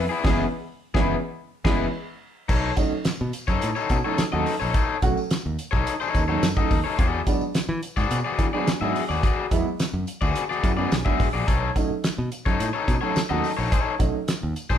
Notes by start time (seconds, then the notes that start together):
0.09 B3 E4 G#4
0.24 F#1 E3 G#3 B3 C#4 E4 G#4, kick, snare, crash
0.94 F#1 E3 G#3 B3 C#4 E4 G#4, kick, snare
1.64 F#1 E3 G#3 B3 C#4 E4 G#4, kick, snare, crash
2.49 B1 D#4 A4 C#5, kick, crash, tambourine
2.76 F#3 A3 C#4 D#4, kick, closed hi-hat, tambourine
2.92 muted fingered electric bass stroke
3.05 C#4 D#4, muted fingered electric bass stroke, snare, closed hi-hat, tambourine
3.21 B2
3.33 closed hi-hat, tambourine
3.48 F#2 D#4 A4 C#5, kick, snare, tambourine
3.61 A2, closed hi-hat, tambourine
3.76 D#4 A4 C#5, tambourine
3.89 B2 C#4 F#4, kick, closed hi-hat, tambourine
4.04 F#3 A3 C#4 D#4 A4 C#5
4.18 muted fingered electric bass stroke, snare, closed hi-hat, tambourine
4.32 D#2 F#3 A3 C#4 D#4 F#4 A4 D#5
4.46 open hi-hat, tambourine
4.60 A#1 C#4 D#4 F#4 A4 C#5, tambourine
4.74 D#4 A4 C#5, kick, closed hi-hat, tambourine
5.02 B1 F#3 A3 C#4 F#4, kick, closed hi-hat, tambourine
5.17 tambourine
5.30 C#4 D#4, snare, closed hi-hat, tambourine
5.46 D#2
5.59 closed hi-hat, tambourine
5.71 B1 D#4 A4 C#5, kick, snare
5.87 closed hi-hat, tambourine
6.00 D#4 A4 C#5, tambourine
6.15 D#2 C#4 D#4, kick, closed hi-hat, tambourine
6.28 F#3 A3 C#4 D#4 A4 C#5
6.43 F#2, snare, closed hi-hat, tambourine
6.57 F#3 A3 C#4 D#4 A4 D#5, kick
6.71 D#2, kick, open hi-hat, tambourine
6.84 C#4 D#4 F#4 A4 C#5
6.98 E2 F#4 G#4 D5, kick, closed hi-hat, tambourine
7.27 F#3 G#3 B3 D4, kick, closed hi-hat, tambourine
7.41 muted fingered electric bass stroke, tambourine
7.55 B3 D4, muted fingered electric bass stroke, snare, closed hi-hat, tambourine
7.69 E3
7.83 closed hi-hat, tambourine
7.97 G#2 F#4 G#4 D5, kick, snare, tambourine
8.11 B2, closed hi-hat, tambourine
8.25 F#4 G#4 D5
8.39 E3 B3 D4, kick, closed hi-hat, tambourine
8.53 F#3 G#3 B3 D4 F#4 G#4 D5
8.67 muted fingered electric bass stroke, snare, closed hi-hat, tambourine
8.81 G#2 F#3 G#3 B3 D4 F#4 G#4 E5
8.96 open hi-hat, tambourine
9.09 D#2 B3 D4 F#4 G#4 D5, tambourine
9.23 F#4 G#4 D5, kick, closed hi-hat, tambourine
9.51 E2 F#3 G#3 B3 E4, kick, closed hi-hat, tambourine
9.79 B3 D4, snare, closed hi-hat, tambourine
9.93 F#2
10.07 closed hi-hat, tambourine
10.21 D2 F#4 G#4 D5, kick, tambourine
10.35 closed hi-hat, tambourine
10.50 F#4 G#4 D5, snare
10.63 F#2 B3 E4, kick, closed hi-hat, tambourine
10.77 F#3 G#3 B3 C#4 F#4 G#4 D5
10.92 B1, snare, closed hi-hat, tambourine
11.05 F#3 G#3 B3 D4 F#4 G#4 E5, kick
11.20 A1, kick, open hi-hat, tambourine
11.33 A#1 B3 D4 F#4 G#4 D5
11.47 B1 D#4 A4 C#5, kick, closed hi-hat, tambourine
11.76 F#3 A3 C#4 D#4, kick, closed hi-hat, tambourine
11.90 muted fingered electric bass stroke
12.04 muted fingered electric bass stroke, snare, closed hi-hat, tambourine
12.18 B2
12.32 closed hi-hat, tambourine
12.46 F#2 D#4 A4 C#5, kick, snare
12.60 A2, closed hi-hat, tambourine
12.73 D#4 A4 C#5
12.87 B2 C#4 D#4, kick, closed hi-hat, tambourine
13.01 F#3 A3 C#4 D#4 A4 C#5
13.16 muted fingered electric bass stroke, snare, closed hi-hat, tambourine
13.29 D#2 F#3 A3 C#4 D#4 F#4 A4 D#5
13.44 open hi-hat, tambourine
13.57 A#1 C#4 D#4 F#4 A4 C#5, tambourine
13.72 D#4 A4 C#5, kick, closed hi-hat, tambourine
13.99 B1 F#3 A3 C#4 D#4, kick, closed hi-hat, tambourine
14.27 C#4, snare, closed hi-hat, tambourine
14.43 D#2
14.56 closed hi-hat, tambourine
14.70 B1 D#4 A4 C#5, kick, snare, tambourine